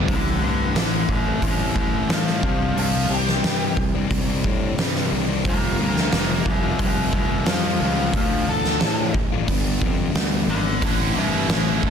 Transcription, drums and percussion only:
0.08 kick, open hi-hat
0.76 snare, open hi-hat
1.09 kick
1.42 kick, open hi-hat
1.76 kick
2.10 snare, open hi-hat
2.27 snare
2.43 kick
2.78 open hi-hat
3.28 snare
3.44 snare, open hi-hat
3.77 kick
4.11 kick, open hi-hat
4.44 kick
4.78 snare, open hi-hat
4.96 snare
5.45 kick, open hi-hat
5.96 snare
6.12 snare, open hi-hat
6.46 kick
6.79 kick, open hi-hat
7.13 kick
7.46 snare, open hi-hat
8.14 kick, open hi-hat
8.64 snare
8.80 snare, open hi-hat
9.14 kick
9.48 kick, open hi-hat
9.82 kick
10.15 snare, open hi-hat
10.82 kick, open hi-hat
11.49 snare, open hi-hat
11.83 kick

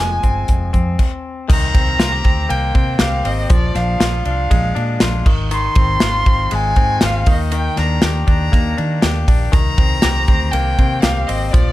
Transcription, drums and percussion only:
0.23 kick, closed hi-hat
0.48 kick, closed hi-hat
0.74 kick, closed hi-hat
0.99 kick, crash
1.50 kick, crash
1.75 kick, ride
2.00 snare, ride
2.24 kick, ride
2.50 ride
2.75 kick, ride
2.99 snare, ride
3.25 open hi-hat, ride
3.50 kick, hi-hat pedal, ride
3.75 snare, ride
4.01 snare, ride
4.25 ride
4.51 kick, ride
4.76 ride
5.00 snare, ride
5.26 kick, crash
5.51 hi-hat pedal, ride
5.75 kick, ride
6.00 snare, ride
6.26 kick, ride
6.51 ride
6.76 kick, ride
7.01 snare, ride
7.26 kick, open hi-hat, ride
7.52 hi-hat pedal, ride
7.76 snare, ride
8.02 snare, ride
8.28 kick, ride
8.53 kick, ride
8.78 ride
9.02 snare, ride
9.28 kick, open hi-hat, ride
9.53 kick, hi-hat pedal, ride
9.78 kick, ride
10.02 snare, clap, ride
10.28 kick, ride
10.53 ride
10.79 kick, ride
11.03 snare, clap, ride
11.29 open hi-hat, ride
11.54 kick, hi-hat pedal, ride

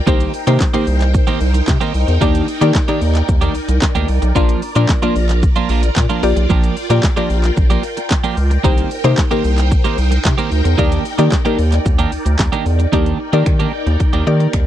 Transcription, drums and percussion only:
0.07 kick, shaker
0.20 closed hi-hat, shaker
0.34 open hi-hat, shaker
0.47 closed hi-hat, shaker
0.60 kick, snare, clap, shaker
0.74 closed hi-hat, shaker
0.87 open hi-hat, shaker
1.01 clap, closed hi-hat, shaker
1.14 kick, shaker
1.27 closed hi-hat, shaker
1.41 open hi-hat, shaker
1.54 closed hi-hat, shaker
1.67 kick, snare, clap, shaker
1.81 closed hi-hat, shaker
1.94 open hi-hat, shaker
2.08 closed hi-hat, shaker
2.21 kick, shaker
2.35 closed hi-hat, shaker
2.48 open hi-hat, shaker
2.61 closed hi-hat, shaker
2.75 kick, snare, clap, shaker
2.88 closed hi-hat, shaker
3.02 open hi-hat, shaker
3.15 clap, closed hi-hat, shaker
3.28 kick, shaker
3.42 closed hi-hat, shaker
3.55 open hi-hat, shaker
3.69 closed hi-hat, shaker
3.82 kick, snare, clap, shaker
3.95 closed hi-hat, shaker
4.08 open hi-hat, shaker
4.22 closed hi-hat, shaker
4.35 kick, shaker
4.49 closed hi-hat, shaker
4.62 open hi-hat, shaker
4.75 closed hi-hat, shaker
4.89 kick, snare, clap, shaker
5.02 closed hi-hat, shaker
5.16 open hi-hat, shaker
5.29 clap, closed hi-hat, shaker
5.43 kick, shaker
5.56 closed hi-hat, shaker
5.69 open hi-hat, shaker
5.83 closed hi-hat, shaker
5.96 kick, snare, clap, shaker
6.10 closed hi-hat, shaker
6.23 open hi-hat, shaker
6.37 closed hi-hat, shaker
6.50 kick, shaker
6.63 closed hi-hat, shaker
6.77 open hi-hat, shaker
6.90 closed hi-hat, shaker
7.03 kick, snare, clap, shaker
7.17 closed hi-hat, shaker
7.30 open hi-hat, shaker
7.44 clap, closed hi-hat, shaker
7.57 kick, shaker
7.70 closed hi-hat, shaker
7.83 open hi-hat, shaker
7.97 closed hi-hat, shaker
8.10 kick, snare, clap, shaker
8.24 closed hi-hat, shaker
8.37 open hi-hat, shaker
8.51 closed hi-hat, shaker
8.64 kick, shaker
8.78 closed hi-hat, shaker
8.91 open hi-hat, shaker
9.04 closed hi-hat, shaker
9.18 kick, snare, clap, shaker
9.31 closed hi-hat, shaker
9.44 open hi-hat, shaker
9.58 clap, closed hi-hat, shaker
9.71 kick, shaker
9.85 closed hi-hat, shaker
9.98 open hi-hat, shaker
10.12 closed hi-hat, shaker
10.25 kick, snare, clap, shaker
10.38 closed hi-hat, shaker
10.52 open hi-hat, shaker
10.65 closed hi-hat, shaker
10.78 kick, shaker
10.92 closed hi-hat, shaker
11.05 open hi-hat, shaker
11.18 closed hi-hat, shaker
11.32 kick, snare, clap, shaker
11.45 closed hi-hat, shaker
11.59 open hi-hat, shaker
11.72 clap, closed hi-hat, shaker
11.86 kick, shaker
11.99 closed hi-hat, shaker
12.12 open hi-hat, shaker
12.26 closed hi-hat, shaker
12.39 kick, snare, clap, shaker
12.53 closed hi-hat, shaker
12.66 open hi-hat, shaker
12.80 closed hi-hat, shaker
12.93 kick, closed hi-hat
13.06 closed hi-hat
13.33 closed hi-hat
13.46 finger snap, kick, closed hi-hat
13.60 closed hi-hat
13.87 closed hi-hat
14.00 kick, closed hi-hat
14.13 closed hi-hat
14.40 closed hi-hat
14.53 finger snap, kick, closed hi-hat

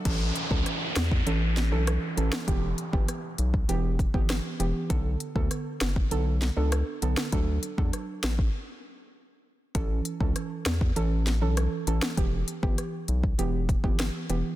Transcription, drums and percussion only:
0.05 kick, closed hi-hat, crash
0.36 closed hi-hat
0.51 kick
0.66 cross-stick, closed hi-hat
0.96 cross-stick, snare, closed hi-hat
1.11 kick
1.27 closed hi-hat
1.57 snare, closed hi-hat
1.87 cross-stick, closed hi-hat
2.17 closed hi-hat
2.33 cross-stick, snare
2.48 kick, closed hi-hat
2.78 closed hi-hat
2.93 kick
3.08 cross-stick, closed hi-hat
3.38 closed hi-hat
3.54 kick
3.69 closed hi-hat
3.99 kick, closed hi-hat
4.14 kick
4.30 cross-stick, snare, closed hi-hat
4.60 closed hi-hat
4.90 kick, closed hi-hat
5.20 closed hi-hat
5.36 kick
5.51 cross-stick, closed hi-hat
5.81 cross-stick, snare, closed hi-hat
5.96 kick
6.11 closed hi-hat
6.42 snare, closed hi-hat
6.72 cross-stick, closed hi-hat
7.02 closed hi-hat
7.17 cross-stick, snare
7.32 kick, closed hi-hat
7.63 closed hi-hat
7.78 kick
7.93 cross-stick, closed hi-hat
8.23 cross-stick, snare, closed hi-hat
8.39 kick
9.75 kick, closed hi-hat
10.05 closed hi-hat
10.21 kick
10.36 cross-stick, closed hi-hat
10.66 cross-stick, snare, closed hi-hat
10.81 kick
10.96 closed hi-hat
11.27 snare, closed hi-hat
11.57 cross-stick, closed hi-hat
11.87 closed hi-hat
12.02 cross-stick, snare
12.17 kick, closed hi-hat
12.48 closed hi-hat
12.63 kick
12.78 cross-stick, closed hi-hat
13.08 closed hi-hat
13.23 kick
13.39 closed hi-hat
13.69 kick, closed hi-hat
13.84 kick
13.99 cross-stick, snare, closed hi-hat
14.30 closed hi-hat

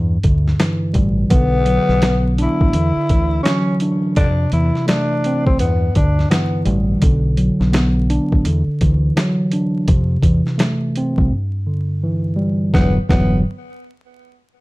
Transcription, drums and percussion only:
0.23 kick, closed hi-hat
0.48 snare
0.60 snare, closed hi-hat
0.94 kick, closed hi-hat
1.30 kick, closed hi-hat
1.66 closed hi-hat
1.89 snare
2.02 snare, closed hi-hat
2.38 closed hi-hat
2.61 kick
2.73 closed hi-hat
3.09 kick, closed hi-hat
3.45 snare, closed hi-hat
3.80 closed hi-hat
4.16 kick, closed hi-hat
4.52 closed hi-hat
4.75 snare
4.88 snare, closed hi-hat
5.24 closed hi-hat
5.47 kick
5.59 closed hi-hat
5.95 kick, closed hi-hat
6.19 snare
6.31 snare, closed hi-hat
6.65 closed hi-hat
7.02 kick, closed hi-hat
7.37 closed hi-hat
7.61 snare
7.73 snare, closed hi-hat
8.10 closed hi-hat
8.32 kick
8.45 closed hi-hat
8.81 kick, closed hi-hat
9.17 snare, closed hi-hat
9.52 closed hi-hat
9.88 kick, closed hi-hat
10.23 kick, closed hi-hat
10.47 snare
10.59 snare, closed hi-hat
10.96 closed hi-hat
11.18 kick
12.74 kick, snare
13.09 kick, snare

